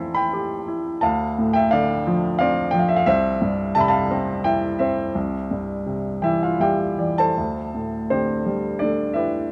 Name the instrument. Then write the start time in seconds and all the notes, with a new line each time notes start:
grand piano
Already playing: A2 E3 C4 E4 F5 G5 A5 B5 C6
0.14 G5 B5
0.33 G4
0.68 E4
1.01 D2 F5 A5
1.38 A2
1.53 E5 G5
1.71 D3 D5 F5
2.07 F3
2.39 C4 D5 F5
2.71 F3 G5
2.79 F5
2.89 E5
2.97 F5
3.06 C2 C5 E5
3.42 G2
3.75 C3 E5 A5
3.81 B5
3.88 F5 A5
4.11 C4
4.44 E4 E5 G5
4.79 C4 C5 E5
5.15 C2
5.51 G2
5.86 C3
6.22 E3 E4 E5 G5
6.43 F4 F5
6.60 G3 G4 E5 G5
6.98 E3 D5
7.18 A4 C5 A5
7.37 D2
7.74 A2
8.10 D3 C4 G4 C5
8.46 G3
8.79 A3 D4 D5
9.14 E4 G4 B4 E5